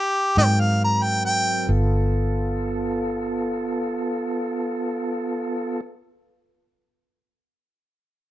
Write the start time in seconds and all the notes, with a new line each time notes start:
Already playing: G4
0.37 G#2 F#3 C4 D#4 A#4 G5
0.60 F5
0.84 A#5
1.03 G5
1.25 G5
1.69 G1 B3 F4 A4